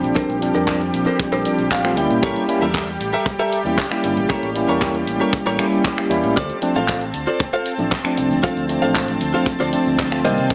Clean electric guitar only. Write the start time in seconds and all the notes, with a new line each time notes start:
0.15 D4 A4 A#4 C5
0.55 D4 A4 A#4 D5
1.06 D4 A4 A#4 C5
1.32 D4 A4 A#4 C5
1.45 D5
1.71 F5, muted clean electric guitar stroke
1.84 muted clean electric guitar stroke
1.97 G5, muted clean electric guitar stroke
2.22 G4 A4 A#4 C#5
2.62 G4 A4 A#4 E5
3.13 G4 A4 A#4 E5
3.39 G4 A4 A#4 E5
3.78 muted clean electric guitar stroke
3.91 muted clean electric guitar stroke
4.04 muted clean electric guitar stroke
4.29 G4 A4 A#4 C#5
4.68 G4 A4 A#4 C#5
5.20 G4 A4 A#4 C#5
5.46 G4 A4 A#4 C#5
5.85 muted clean electric guitar stroke
5.98 muted clean electric guitar stroke
6.11 muted clean electric guitar stroke
6.36 F4 A4 C5 D5
6.76 F4 A4 C5 F5
7.27 F4 A4 C5 D5
7.53 F4 A4 C5 F5
7.91 muted clean electric guitar stroke
8.05 muted clean electric guitar stroke
8.17 muted clean electric guitar stroke
8.43 F4 A4 C5 F5
8.82 F4 A4 C5 F5
9.34 F4 A4 C5 F5
9.60 F4 A4 C5 D5
9.99 muted clean electric guitar stroke
10.12 muted clean electric guitar stroke
10.24 G4 A#4 C5 D#5